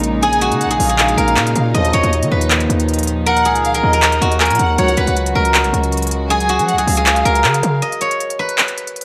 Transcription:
0.00 0.53 A#1 loud
0.00 4.74 A#2 medium
0.00 1.72 C#3 medium
0.00 1.72 G#3 medium
0.00 4.74 D#4 medium
0.00 0.41 F#4 medium
0.00 0.22 G#4 medium
0.00 1.17 A#4 medium
0.00 closed hi-hat medium
0.23 0.70 G#4 loud
0.23 0.58 G#5 loud
0.23 closed hi-hat medium
0.33 closed hi-hat medium
0.41 2.85 F#4 loud
0.41 closed hi-hat medium
0.52 0.67 C#3 loud
0.52 closed hi-hat medium
0.61 0.79 F#5 medium
0.61 closed hi-hat medium
0.66 0.79 A#1 loud
0.71 0.89 G#4 medium
0.71 closed hi-hat medium
0.80 1.16 A#1 loud
0.80 1.71 F5 medium
0.80 open hi-hat medium
0.89 3.17 G#4 medium
0.89 closed hi-hat medium
0.99 clap loud
0.99 closed hi-hat medium
1.08 closed hi-hat medium
1.17 1.38 A#1 loud
1.17 2.38 A#4 medium
1.17 closed hi-hat medium
1.28 closed hi-hat medium
1.37 1.55 A#2 loud
1.37 clap loud
1.37 closed hi-hat soft
1.47 closed hi-hat medium
1.56 1.74 A#2 loud
1.56 closed hi-hat medium
1.74 2.11 A#1 loud
1.74 1.93 D#2 loud
1.74 2.11 F#2 loud
1.74 4.75 D#3 medium
1.74 2.11 F3 loud
1.74 4.75 F3 medium
1.74 3.53 D#5 medium
1.74 2.10 D#5 loud
1.74 closed hi-hat medium
1.85 closed hi-hat medium
1.93 2.03 D#2 loud
1.93 3.85 C#5 medium
1.93 closed hi-hat medium
2.04 2.24 D#2 loud
2.04 closed hi-hat medium
2.13 closed hi-hat medium
2.23 2.31 D#3 loud
2.23 closed hi-hat medium
2.31 2.68 D#2 loud
2.31 3.32 B4 medium
2.41 closed hi-hat medium
2.50 clap loud
2.50 closed hi-hat medium
2.60 closed hi-hat medium
2.69 3.47 D#2 loud
2.69 closed hi-hat medium
2.80 closed hi-hat medium
2.89 closed hi-hat soft
2.94 closed hi-hat medium
2.99 closed hi-hat medium
3.03 closed hi-hat medium
3.07 closed hi-hat medium
3.26 3.74 A#4 loud
3.26 3.62 F#5 loud
3.26 closed hi-hat medium
3.37 closed hi-hat medium
3.45 3.82 C#2 loud
3.45 5.73 G#4 medium
3.45 closed hi-hat medium
3.55 closed hi-hat medium
3.64 3.82 F5 medium
3.64 closed hi-hat medium
3.74 3.93 A#4 medium
3.74 closed hi-hat medium
3.83 4.20 D#2 loud
3.83 4.37 D#5 medium
3.93 4.40 A#4 medium
3.93 closed hi-hat medium
4.02 clap loud
4.02 closed hi-hat medium
4.12 closed hi-hat medium
4.21 4.52 D#2 loud
4.21 6.49 F#4 medium
4.21 closed hi-hat medium
4.32 closed hi-hat medium
4.40 5.03 A#4 medium
4.40 4.58 G#5 medium
4.40 clap loud
4.40 closed hi-hat soft
4.45 closed hi-hat medium
4.50 4.59 A#2 loud
4.50 closed hi-hat medium
4.55 closed hi-hat medium
4.59 4.78 D#2 loud
4.59 4.77 F#5 loud
4.59 closed hi-hat medium
4.78 4.97 C#2 loud
4.78 5.14 C#2 loud
4.78 5.14 G#2 medium
4.78 7.79 C#3 medium
4.78 7.79 F#3 medium
4.78 5.14 F#3 loud
4.78 7.79 G#3 medium
4.78 7.79 F#4 medium
4.78 6.70 C#5 medium
4.78 5.14 F#5 loud
4.78 closed hi-hat medium
4.88 closed hi-hat medium
4.97 5.07 C#2 loud
4.97 5.41 B4 medium
4.97 closed hi-hat medium
5.07 5.34 C#2 loud
5.07 closed hi-hat medium
5.17 closed hi-hat medium
5.26 closed hi-hat medium
5.35 5.66 C#2 loud
5.35 7.25 A#4 medium
5.45 closed hi-hat medium
5.54 clap loud
5.54 closed hi-hat medium
5.64 5.73 B1 loud
5.64 closed hi-hat medium
5.73 6.61 C#2 loud
5.73 closed hi-hat medium
5.83 closed hi-hat medium
5.92 closed hi-hat medium
5.97 closed hi-hat medium
6.02 closed hi-hat medium
6.07 closed hi-hat medium
6.11 closed hi-hat medium
6.30 6.78 G#4 loud
6.30 6.66 G#5 loud
6.30 closed hi-hat medium
6.40 closed hi-hat medium
6.49 8.93 F#4 medium
6.49 closed hi-hat medium
6.59 6.75 F3 loud
6.59 closed hi-hat medium
6.68 6.86 F#5 medium
6.68 closed hi-hat medium
6.73 6.87 C#2 loud
6.78 6.97 G#4 medium
6.78 closed hi-hat medium
6.87 7.24 C#2 loud
6.87 7.78 F5 medium
6.87 open hi-hat medium
6.97 9.05 G#4 medium
6.97 closed hi-hat medium
7.06 clap loud
7.06 closed hi-hat medium
7.16 closed hi-hat medium
7.25 7.46 C#2 loud
7.25 8.45 A#4 medium
7.25 closed hi-hat medium
7.35 closed hi-hat medium
7.44 7.62 C#3 loud
7.44 clap loud
7.44 closed hi-hat soft
7.54 closed hi-hat medium
7.63 7.81 C#3 loud
7.63 closed hi-hat medium
7.82 9.05 D#5 medium
7.82 closed hi-hat medium
7.92 closed hi-hat medium
8.01 9.05 C#5 medium
8.01 closed hi-hat medium
8.11 closed hi-hat medium
8.20 closed hi-hat medium
8.30 closed hi-hat medium
8.39 9.05 B4 medium
8.49 closed hi-hat medium
8.58 clap loud
8.58 closed hi-hat medium
8.68 closed hi-hat medium
8.78 closed hi-hat medium
8.87 closed hi-hat medium
8.96 closed hi-hat soft
9.01 closed hi-hat medium

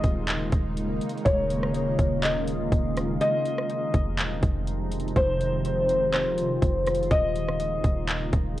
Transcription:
0.00 0.51 D#1 loud
0.00 3.17 C#3 medium
0.00 8.60 D#3 medium
0.00 7.07 G#3 medium
0.00 3.17 A#3 medium
0.00 1.24 D#4 medium
0.00 0.24 D#5 loud
0.00 kick medium
0.00 closed hi-hat medium
0.28 clap loud
0.28 closed hi-hat medium
0.52 0.99 D#1 loud
0.52 kick loud
0.52 closed hi-hat medium
0.77 closed hi-hat medium
1.01 closed hi-hat medium
1.09 closed hi-hat medium
1.18 closed hi-hat soft
1.25 1.96 D#1 loud
1.25 3.19 F4 medium
1.25 2.19 C#5 loud
1.25 kick loud
1.25 closed hi-hat medium
1.50 closed hi-hat medium
1.63 cross-stick medium
1.74 closed hi-hat medium
1.99 2.69 D#1 loud
1.99 kick medium
1.99 closed hi-hat medium
2.23 3.17 D#5 medium
2.23 clap loud
2.23 closed hi-hat medium
2.48 closed hi-hat medium
2.72 3.19 D#1 loud
2.72 kick medium
2.72 closed hi-hat medium
2.97 cross-stick medium
2.97 closed hi-hat medium
3.21 7.07 C3 medium
3.21 7.07 F3 medium
3.21 5.14 D#4 medium
3.21 4.14 D#5 loud
3.21 closed hi-hat medium
3.45 closed hi-hat medium
3.58 cross-stick medium
3.70 closed hi-hat medium
3.94 4.20 F1 loud
3.94 kick medium
3.94 closed hi-hat medium
4.18 4.42 D#1 loud
4.18 clap loud
4.18 closed hi-hat medium
4.43 5.13 F1 loud
4.43 kick loud
4.43 closed hi-hat medium
4.67 closed hi-hat medium
4.92 closed hi-hat medium
5.00 closed hi-hat medium
5.08 closed hi-hat soft
5.16 6.27 F1 loud
5.16 7.09 F4 medium
5.16 6.10 C5 loud
5.16 kick loud
5.16 closed hi-hat medium
5.41 closed hi-hat medium
5.65 closed hi-hat medium
5.89 closed hi-hat medium
6.13 7.07 C5 medium
6.13 clap loud
6.13 closed hi-hat medium
6.26 6.60 D#1 loud
6.38 closed hi-hat medium
6.62 7.09 F1 loud
6.62 kick medium
6.62 closed hi-hat medium
6.87 cross-stick medium
6.87 closed hi-hat medium
6.95 closed hi-hat medium
7.03 closed hi-hat soft
7.11 7.81 D#1 loud
7.11 8.60 C#3 medium
7.11 8.60 G#3 medium
7.11 8.60 A#3 medium
7.11 8.60 D#4 medium
7.11 8.05 D#5 loud
7.11 kick loud
7.11 closed hi-hat medium
7.36 closed hi-hat medium
7.49 cross-stick medium
7.60 closed hi-hat medium
7.84 8.31 D#1 loud
7.84 kick medium
7.84 closed hi-hat medium
8.09 clap loud
8.09 closed hi-hat medium
8.33 8.60 D#1 loud
8.33 kick loud
8.33 closed hi-hat medium

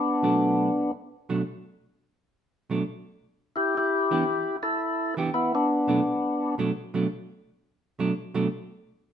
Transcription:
0.00 0.92 B3 medium
0.00 0.91 D4 medium
0.22 0.68 B2 medium
0.22 0.69 F#3 medium
0.22 0.69 A3 medium
0.22 0.69 D4 medium
1.29 1.41 B2 medium
1.29 1.41 F#3 medium
1.29 1.41 A3 medium
1.29 1.41 D4 medium
2.70 2.82 B2 soft
2.70 2.82 F#3 medium
2.70 2.82 A3 medium
2.70 2.82 D4 medium
3.56 3.75 E4 medium
3.56 3.77 G4 medium
3.77 4.56 E4 medium
3.77 4.57 G4 medium
4.11 4.23 E3 medium
4.11 4.23 B3 medium
4.11 4.23 D4 medium
4.11 4.24 G4 medium
4.63 5.14 E4 medium
4.63 5.14 A4 loud
5.17 5.29 E3 medium
5.17 5.29 B3 medium
5.17 5.29 D4 medium
5.17 5.29 G4 medium
5.34 5.53 B3 medium
5.34 5.55 E4 medium
5.55 6.55 B3 medium
5.55 6.55 D4 medium
5.87 5.99 B2 medium
5.87 6.00 F#3 medium
5.87 6.00 A3 medium
5.87 6.00 D4 medium
6.58 6.70 B2 medium
6.58 6.70 F#3 medium
6.58 6.70 A3 medium
6.58 6.71 D4 medium
6.94 7.05 B2 medium
6.94 7.06 F#3 medium
6.94 7.06 A3 medium
6.94 7.06 D4 medium
7.99 8.11 B2 medium
7.99 8.11 F#3 medium
7.99 8.11 A3 medium
7.99 8.11 D4 medium
8.34 8.46 B2 medium
8.34 8.46 F#3 medium
8.34 8.47 A3 medium
8.34 8.47 D4 medium

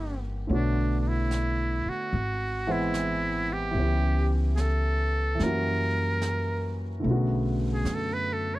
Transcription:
0.00 0.45 G1 medium
0.00 0.46 E3 soft
0.00 0.48 A#3 soft
0.00 0.48 C4 soft
0.00 0.50 D4 soft
0.00 0.20 G4 medium
0.00 0.51 G4 medium
0.00 0.49 F#5 soft
0.47 1.81 B1 medium
0.47 2.11 D3 soft
0.47 2.11 A3 soft
0.47 2.12 B3 soft
0.47 2.13 C#5 soft
0.47 brush sweep soft
0.53 1.00 D4 medium
0.53 2.13 F#4 soft
1.00 1.09 D4 soft
1.08 1.91 E4 medium
1.31 snare soft
1.31 hi-hat pedal soft
1.86 2.73 F#4 medium
1.86 muted upright bass stroke soft
2.13 3.71 G#1 medium
2.13 brush sweep soft
2.67 3.69 E3 medium
2.67 3.75 G#3 soft
2.67 3.75 B3 soft
2.67 3.75 C4 soft
2.67 3.75 F#5 medium
2.72 3.54 E4 medium
2.94 snare soft
2.94 hi-hat pedal soft
3.53 4.32 G4 medium
3.71 5.35 C#2 medium
3.71 5.33 E3 soft
3.71 5.36 G3 soft
3.76 5.40 B3 soft
3.76 5.41 C#4 soft
3.76 brush sweep soft
3.82 5.42 G4 soft
4.55 4.62 G#4 soft
4.55 snare soft
4.55 hi-hat pedal soft
4.60 5.45 A4 medium
5.35 7.02 E3 soft
5.35 7.03 G3 soft
5.39 7.00 F#2 medium
5.39 7.04 A#3 soft
5.39 7.06 C#4 soft
5.39 brush sweep soft
5.39 snare soft
5.43 7.07 F#4 soft
5.43 6.79 A#4 medium
6.22 snare soft
6.22 hi-hat pedal soft
7.00 8.59 D3 soft
7.00 8.59 A3 soft
7.00 brush sweep soft
7.04 7.82 B1 medium
7.04 8.59 C#3 soft
7.04 8.59 B3 soft
7.11 8.59 F#4 medium
7.74 7.96 G#4 medium
7.84 8.59 F#2 medium
7.84 snare soft
7.84 hi-hat pedal soft
7.94 8.15 A4 medium
8.13 8.35 B4 medium
8.33 8.56 A4 medium
8.55 8.59 C#5 medium

